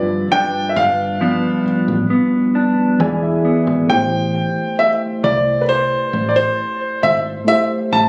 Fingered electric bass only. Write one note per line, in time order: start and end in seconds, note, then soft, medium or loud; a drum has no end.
0.00 0.22 G1 medium
0.76 1.48 G1 loud
1.66 muted fingered electric bass stroke soft
1.88 2.06 A1 medium
3.00 3.36 E1 loud
3.67 3.85 G#1 medium
3.89 4.43 A1 loud
5.24 5.96 C2 loud
6.13 6.49 A1 medium
7.03 7.39 G#1 medium
7.92 8.09 A1 medium